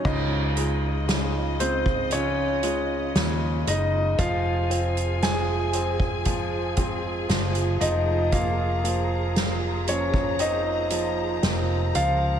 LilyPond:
<<
  \new Staff \with { instrumentName = "String section" } { \time 4/4 \key des \major \tempo 4 = 58 << { <des ees''>1 | aes''2.~ aes''8 bes''8~ | bes''1 | } \\ { f'1 | aes'1~ | aes'1 | } >> }
  \new Staff \with { instrumentName = "Grand piano" } { \time 4/4 \key des \major <ees' ees''>4. <c' c''>8 <des' des''>4. <ees' ees''>8 | <f' f''>4 <aes' aes''>4. r4 <ees' ees''>8 | <f' f''>4. <des' des''>8 <ees' ees''>4. <f' f''>8 | }
  \new Staff \with { instrumentName = "Nylon-string guitar" } { \time 4/4 \key des \major <des f aes ees' f'>8 <aes ees' f'>8 <des f aes ees' f'>8 <aes ees' f'>8 <f aes ees' f'>8 <aes ees' f'>8 <des f aes ees' f'>4 | <f, c f aes c' f'>8 <f aes c' f'>8 <f, c f aes c' f'>8 <f aes c' f'>8 <f aes c' f'>8 <f aes c' f'>8 <f, c f aes c' f'>8 <f, c f bes c' f'>8~ | <f, c f bes c' f'>8 <f bes c' f'>8 <f, c f bes c' f'>8 <f bes f'>8 <f bes c' f'>8 <f bes c' f'>8 <f, c f bes c' f'>4 | }
  \new Staff \with { instrumentName = "Grand piano" } { \clef bass \time 4/4 \key des \major des8 aes8 des8 aes8 des8 aes8 des8 aes8 | f8 c'8 f8 c'8 f8 c'8 f8 f8 | bes8 f4 f8 c'8 f8 c'8 f8 | }
  \new Staff \with { instrumentName = "Fretless electric bass" } { \clef bass \time 4/4 \key des \major des,2. ees,8 ges,,8 | f,,2. ges,,8 f,,8~ | f,,2. f,,8 des,8 | }
  \new DrumStaff \with { instrumentName = "Drums" } \drummode { \time 4/4 <cymc bd>8 hh8 <hh sn>8 hh16 bd16 hh8 hh8 <hh sn>8 hh8 | <hh bd>8 hh16 hh16 <hh sn>8 hh16 bd16 <hh bd>8 <hh bd>8 <hh sn>16 hh16 hh8 | <hh bd>8 hh8 <hh sn>8 hh16 bd16 hh8 hh8 <hh sn>8 hh8 | }
>>